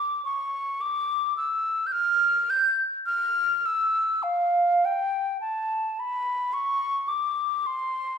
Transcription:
flute
Already playing: D6
0.25 C#6
0.81 D6
1.37 E6
1.86 G6
1.92 F6
2.50 G6
3.06 F6
3.66 E6
4.23 F5
4.85 G5
5.41 A5
5.99 B5
6.53 C#6
7.08 D6
7.66 C6

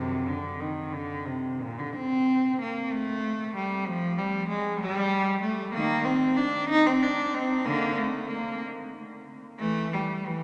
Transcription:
cello
Already playing: F#2 C3
0.28 D3
0.60 D#3
0.93 D3
1.26 C3
1.61 A#2
1.79 D3
1.95 C4
2.61 A#3
2.93 A3
3.56 G3
3.87 F3
4.18 G3
4.49 G#3
4.80 G3
5.41 A3
5.74 D#3 A#3
6.04 C4
6.37 D4
6.69 D#4
6.86 C4
7.02 D4
7.34 C4
7.65 D3 A#3
7.97 A3
8.29 A#3
9.59 E3 A3
9.93 G3
10.27 E3

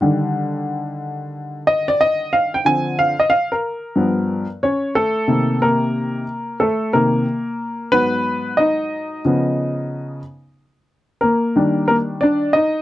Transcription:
upright piano
0.01 D3 D#3 G3
1.67 D#5
1.88 D5
2.01 D#5
2.33 F5
2.54 G5
2.65 D3 F3 C4 G#5
2.99 F5
3.20 D#5
3.30 F5
3.52 A#4
3.96 G2 F3 B3
4.63 C#4 C#5
4.95 A3 A4
5.28 C3 D#3 A#3
5.62 A#3 A#4
6.60 A3 A4
6.93 C3 D#3 A#3 A#4
7.92 G#2 F#3 B3 B4
8.57 D#4 D#5
9.25 C#3 F3 B3
11.21 A#3 A#4
11.56 D#3 G3 D4
11.88 A#3 A#4
12.21 D4 D5
12.53 D#4 D#5

